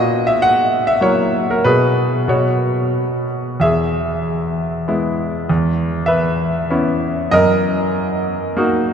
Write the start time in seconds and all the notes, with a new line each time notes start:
Already playing: A#2 F#4 D#5
0.27 E5
0.42 F#5
0.87 E5
1.01 F#3 A#3 E4 C#5
1.50 A#4
1.64 B2 G#4 B4
2.28 B2 F#4 C#5
3.60 E2 G#4 E5
4.88 G#3 B3 E4
5.49 E2
6.06 B4 E5
6.70 B3 C#4 E4
7.31 F#2 A#4 D#5
8.57 A#3 D#4 F#4